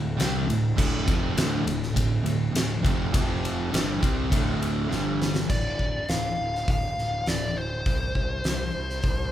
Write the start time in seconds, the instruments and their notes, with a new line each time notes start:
Already playing: picked electric bass D1, distorted electric guitar D2 A2
0.18 picked electric bass C2, distorted electric guitar C3 G3 C4, snare, ride
0.48 picked electric bass D1, distorted electric guitar D2 A2, ride
0.77 picked electric bass D1, distorted electric guitar D2 A2 D3, kick, crash
1.07 picked electric bass F1, distorted electric guitar F2 C3 F3, kick, ride
1.36 picked electric bass D1, distorted electric guitar D2 A2 D3, snare, ride
1.65 picked electric bass D1, distorted electric guitar D2 A2, ride
1.83 snare
1.96 picked electric bass D1, distorted electric guitar D2 A2, kick, ride
2.23 picked electric bass D1, distorted electric guitar D2 A2, ride
2.54 picked electric bass D1, distorted electric guitar D2 A2, snare, ride
2.83 picked electric bass F1, distorted electric guitar F2 C3 F3, kick, ride
3.13 picked electric bass F1, distorted electric guitar F2 C3 F3, kick, ride
3.45 ride
3.71 picked electric bass G1, distorted electric guitar G2 D3 G3, snare, ride
4.01 picked electric bass C2, distorted electric guitar C3 G3 C4, kick, ride
4.29 picked electric bass D1, distorted electric guitar D2 A2 D3, kick, ride
4.62 ride
4.88 picked electric bass G1, distorted electric guitar G2 D3 G3, snare
5.22 snare
5.35 snare
5.49 picked electric bass D1, lead electric guitar D5, kick, crash
5.79 kick
6.09 picked electric bass D1, lead electric guitar F5, snare, open hi-hat
6.39 picked electric bass D1
6.55 snare
6.68 picked electric bass D1, lead electric guitar F5, kick, open hi-hat
6.98 picked electric bass D1, snare
7.26 picked electric bass D1, lead electric guitar D5, snare, open hi-hat
7.57 picked electric bass D1, lead electric guitar C5
7.86 picked electric bass C2, kick, open hi-hat
8.15 picked electric bass C2, kick
8.44 picked electric bass C2, snare, open hi-hat
8.75 picked electric bass C2
8.90 snare
9.03 picked electric bass C2, kick, open hi-hat